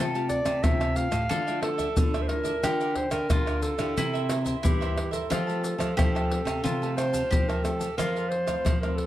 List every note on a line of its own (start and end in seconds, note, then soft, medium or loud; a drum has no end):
0.00 0.39 C3 medium
0.00 0.61 C3 medium
0.00 0.13 G4 soft
0.00 0.12 A4 soft
0.00 1.28 A4 loud
0.00 0.13 F5 soft
0.00 0.13 A5 medium
0.14 0.59 A3 medium
0.14 0.59 F4 medium
0.14 0.59 G4 medium
0.14 0.28 G4 medium
0.14 0.29 F5 medium
0.14 0.29 A5 medium
0.14 pandeiro soft
0.14 maracas soft
0.29 0.65 D5 loud
0.29 muted cavaquinho stroke soft
0.29 pandeiro medium
0.29 maracas medium
0.29 surdo soft
0.45 0.60 C3 medium
0.45 0.62 G4 medium
0.45 0.61 F5 medium
0.45 0.61 A5 medium
0.45 pandeiro medium
0.45 tamborim medium
0.45 maracas medium
0.45 surdo soft
0.63 1.27 C3 medium
0.63 1.06 C3 medium
0.63 0.92 A3 medium
0.63 0.92 F4 medium
0.63 0.79 G4 soft
0.63 0.92 G4 medium
0.63 0.79 A4 soft
0.63 0.98 E5 medium
0.63 0.79 F5 medium
0.63 0.79 A5 medium
0.63 pandeiro medium
0.63 tamborim medium
0.63 maracas medium
0.63 surdo loud
0.80 1.11 G4 medium
0.80 1.11 F5 medium
0.80 1.10 A5 medium
0.80 pandeiro soft
0.80 tamborim medium
0.80 maracas soft
0.96 1.18 A3 soft
0.96 1.18 F4 medium
0.96 1.19 G4 medium
0.96 1.62 F5 loud
0.96 pandeiro medium
0.96 maracas medium
1.11 1.27 A2 medium
1.11 1.28 G4 medium
1.11 1.28 F5 medium
1.11 1.27 A5 medium
1.11 pandeiro medium
1.11 tamborim medium
1.11 maracas medium
1.11 surdo soft
1.29 1.87 D3 loud
1.29 1.94 D3 medium
1.29 1.41 F3 medium
1.29 1.41 A3 medium
1.29 1.41 E4 medium
1.29 1.45 F4 medium
1.29 1.45 A4 soft
1.29 2.63 A4 medium
1.29 1.46 D5 medium
1.29 1.45 E5 medium
1.29 pandeiro medium
1.29 maracas medium
1.29 surdo medium
1.47 1.92 F3 medium
1.47 1.93 A3 medium
1.47 1.92 E4 medium
1.47 1.61 A4 medium
1.47 1.61 D5 medium
1.47 1.62 E5 medium
1.47 pandeiro soft
1.47 maracas soft
1.62 1.78 F4 medium
1.62 1.78 A4 medium
1.62 2.24 A4 loud
1.62 1.77 D5 medium
1.62 1.77 E5 medium
1.62 pandeiro medium
1.62 tamborim medium
1.78 2.12 A4 medium
1.78 2.11 D5 medium
1.78 2.11 E5 medium
1.78 pandeiro medium
1.78 maracas medium
1.78 surdo soft
1.97 2.61 A2 medium
1.97 2.54 D3 medium
1.97 2.26 F3 medium
1.97 2.26 A3 medium
1.97 2.26 E4 medium
1.97 pandeiro medium
1.97 maracas medium
1.97 surdo loud
2.14 2.27 A4 medium
2.14 2.28 D5 medium
2.14 2.28 E5 medium
2.14 pandeiro soft
2.14 tamborim medium
2.14 maracas soft
2.22 2.29 C5 medium
2.28 2.52 F3 medium
2.28 2.52 A3 medium
2.28 2.52 E4 medium
2.28 2.97 A#4 loud
2.28 muted cavaquinho stroke soft
2.28 pandeiro medium
2.28 tamborim medium
2.44 2.62 A4 soft
2.44 2.61 D5 medium
2.44 2.61 E5 medium
2.44 pandeiro medium
2.44 maracas medium
2.44 surdo soft
2.63 3.06 D3 medium
2.63 3.28 D3 medium
2.63 3.07 A#3 medium
2.63 3.07 F4 medium
2.63 2.79 G4 soft
2.63 3.26 G4 medium
2.63 3.08 G4 medium
2.63 2.79 A#4 soft
2.63 2.79 D5 medium
2.63 pandeiro medium
2.63 tamborim medium
2.63 maracas medium
2.63 surdo medium
2.80 2.94 A#4 medium
2.80 2.94 D5 medium
2.80 2.95 F5 medium
2.80 pandeiro soft
2.80 maracas soft
2.95 3.11 C5 medium
2.95 muted cavaquinho stroke soft
2.95 pandeiro medium
2.95 surdo soft
3.10 3.27 D3 medium
3.10 3.64 A#4 medium
3.10 3.28 A#4 medium
3.10 3.28 D5 medium
3.10 3.27 F5 medium
3.10 pandeiro medium
3.10 tamborim medium
3.10 maracas medium
3.10 surdo soft
3.29 3.73 D3 medium
3.29 3.95 D3 medium
3.29 3.62 A#3 medium
3.29 3.93 F4 medium
3.29 3.62 F4 medium
3.29 3.45 G4 soft
3.29 3.62 G4 medium
3.29 3.45 A#4 medium
3.29 3.46 D5 medium
3.29 3.45 F5 medium
3.29 pandeiro medium
3.29 tamborim medium
3.29 maracas medium
3.29 surdo loud
3.46 3.78 A#4 medium
3.46 3.77 D5 medium
3.46 3.77 F5 medium
3.46 pandeiro soft
3.46 tamborim medium
3.46 maracas soft
3.62 4.36 A4 medium
3.62 pandeiro medium
3.62 maracas medium
3.78 3.94 D3 medium
3.78 4.24 A#3 medium
3.78 4.25 E4 medium
3.78 4.25 G4 medium
3.78 3.95 A#4 medium
3.78 3.95 D5 medium
3.78 3.94 F5 medium
3.78 pandeiro medium
3.78 tamborim medium
3.78 maracas medium
3.78 surdo soft
3.96 4.61 C3 medium
3.96 4.54 C3 loud
3.96 4.12 E4 medium
3.96 4.62 E4 medium
3.96 4.12 A#4 medium
3.96 4.12 C5 medium
3.96 4.12 E5 medium
3.96 pandeiro medium
3.96 maracas medium
3.96 surdo medium
4.13 4.28 A#4 medium
4.13 4.28 C5 medium
4.13 4.29 E5 medium
4.13 pandeiro soft
4.13 maracas soft
4.29 4.62 A#3 medium
4.29 4.45 E4 soft
4.29 4.62 E4 soft
4.29 4.62 G4 medium
4.29 4.45 A#4 medium
4.29 4.44 C5 medium
4.29 4.43 E5 medium
4.29 pandeiro medium
4.29 tamborim medium
4.29 maracas medium
4.45 4.79 A#4 medium
4.45 4.78 C5 medium
4.45 4.78 E5 medium
4.45 pandeiro medium
4.45 maracas medium
4.45 surdo soft
4.63 5.28 G2 medium
4.63 5.20 E3 medium
4.63 5.26 E4 medium
4.63 5.10 G4 medium
4.63 pandeiro medium
4.63 maracas medium
4.63 surdo loud
4.80 5.26 A#3 medium
4.80 5.26 E4 medium
4.80 5.27 G4 medium
4.80 4.95 A#4 medium
4.80 4.95 C5 medium
4.80 4.95 E5 medium
4.80 pandeiro soft
4.80 tamborim medium
4.80 maracas soft
4.96 muted cavaquinho stroke soft
4.96 pandeiro medium
4.96 tamborim medium
5.11 6.93 A4 medium
5.11 5.29 A#4 medium
5.11 5.28 C5 medium
5.11 5.28 E5 medium
5.11 pandeiro medium
5.11 maracas medium
5.11 surdo soft
5.30 5.73 F3 medium
5.30 5.95 F3 medium
5.30 5.41 A3 medium
5.30 5.41 C4 medium
5.30 5.93 F4 medium
5.30 5.46 G4 medium
5.30 5.42 G4 medium
5.30 5.46 A4 soft
5.30 5.46 F5 soft
5.30 5.46 A5 soft
5.30 pandeiro medium
5.30 tamborim medium
5.30 maracas medium
5.30 surdo medium
5.47 5.93 A3 medium
5.47 5.93 C4 medium
5.47 5.62 G4 medium
5.47 5.94 G4 medium
5.47 5.62 F5 medium
5.47 5.62 A5 medium
5.47 pandeiro soft
5.47 maracas soft
5.62 muted cavaquinho stroke soft
5.62 pandeiro medium
5.62 maracas medium
5.78 5.94 F3 medium
5.78 5.96 G4 medium
5.78 5.95 F5 medium
5.78 5.95 A5 medium
5.78 pandeiro medium
5.78 tamborim medium
5.78 maracas medium
5.78 surdo soft
5.97 6.61 C3 medium
5.97 6.40 F3 medium
5.97 6.26 A3 medium
5.97 6.26 C4 medium
5.97 6.63 G4 medium
5.97 6.13 G4 soft
5.97 6.26 G4 medium
5.97 6.13 A4 soft
5.97 6.13 F5 soft
5.97 6.13 A5 medium
5.97 pandeiro medium
5.97 tamborim medium
5.97 maracas medium
5.97 surdo loud
6.15 6.46 G4 soft
6.15 6.45 F5 medium
6.15 6.44 A5 medium
6.15 pandeiro soft
6.15 tamborim medium
6.15 maracas soft
6.30 6.75 A3 medium
6.30 6.75 C4 medium
6.30 6.76 G4 medium
6.30 pandeiro medium
6.45 6.61 C3 medium
6.45 6.63 G4 medium
6.45 6.62 F5 medium
6.45 6.62 A5 medium
6.45 pandeiro medium
6.45 tamborim medium
6.45 maracas medium
6.45 surdo soft
6.64 7.21 C3 medium
6.64 7.28 F3 medium
6.64 7.30 F4 medium
6.64 6.80 G4 medium
6.64 6.80 A4 medium
6.64 6.80 F5 soft
6.64 6.80 A5 medium
6.64 pandeiro medium
6.64 maracas medium
6.64 surdo medium
6.81 7.26 A3 medium
6.81 7.26 C4 medium
6.81 7.26 G4 medium
6.81 6.96 G4 medium
6.81 6.96 F5 medium
6.81 6.97 A5 medium
6.81 pandeiro soft
6.81 maracas soft
6.97 7.13 G4 medium
6.97 7.13 A4 soft
6.97 7.50 C5 loud
6.97 7.12 F5 medium
6.97 7.11 A5 medium
6.97 pandeiro medium
6.97 tamborim medium
6.97 maracas medium
7.13 7.47 G4 medium
7.13 7.46 F5 medium
7.13 7.46 A5 medium
7.13 pandeiro medium
7.13 maracas medium
7.13 surdo soft
7.30 7.95 C3 medium
7.30 7.88 F3 medium
7.30 7.51 A3 medium
7.30 7.51 C4 medium
7.30 7.94 G4 medium
7.30 7.51 G4 medium
7.30 pandeiro medium
7.30 maracas medium
7.30 surdo loud
7.48 7.63 G4 soft
7.48 7.65 A#4 medium
7.48 7.64 F5 medium
7.48 7.64 A5 medium
7.48 pandeiro soft
7.48 tamborim medium
7.48 maracas soft
7.64 7.86 A3 medium
7.64 7.86 C4 soft
7.64 7.86 G4 medium
7.64 7.97 A4 medium
7.64 muted cavaquinho stroke soft
7.64 pandeiro medium
7.64 tamborim medium
7.64 maracas medium
7.79 7.97 G4 medium
7.79 7.96 F5 medium
7.79 7.96 A5 medium
7.79 pandeiro medium
7.79 maracas medium
7.79 surdo soft
7.97 8.62 F2 medium
7.97 8.55 F3 medium
7.97 8.44 C4 medium
7.97 8.14 E4 soft
7.97 9.06 F4 medium
7.97 8.14 A4 soft
7.97 8.31 A#4 loud
7.97 8.14 C5 soft
7.97 8.14 F5 soft
7.97 pandeiro medium
7.97 tamborim medium
7.97 maracas medium
7.97 surdo medium
8.16 8.30 A4 medium
8.16 8.30 C5 medium
8.16 8.31 F5 medium
8.16 pandeiro soft
8.16 maracas soft
8.29 8.80 C5 loud
8.29 muted cavaquinho stroke soft
8.29 pandeiro medium
8.47 8.76 E3 medium
8.47 8.76 A3 medium
8.47 8.76 C4 medium
8.47 8.64 A4 soft
8.47 8.63 C5 medium
8.47 8.63 F5 medium
8.47 pandeiro medium
8.47 tamborim medium
8.47 maracas medium
8.47 surdo soft
8.65 9.06 C3 medium
8.65 9.06 F3 medium
8.65 8.81 E4 soft
8.65 8.81 A4 soft
8.65 8.81 C5 soft
8.65 8.82 F5 medium
8.65 pandeiro medium
8.65 tamborim medium
8.65 maracas medium
8.65 surdo loud
8.81 9.06 E3 medium
8.81 9.06 A3 medium
8.81 9.06 C4 medium
8.81 8.97 A#4 medium
8.81 9.06 C5 medium
8.81 9.06 F5 medium
8.81 pandeiro soft
8.81 tamborim medium
8.81 maracas soft
8.85 9.06 A4 soft
8.96 9.06 A4 medium
8.96 pandeiro medium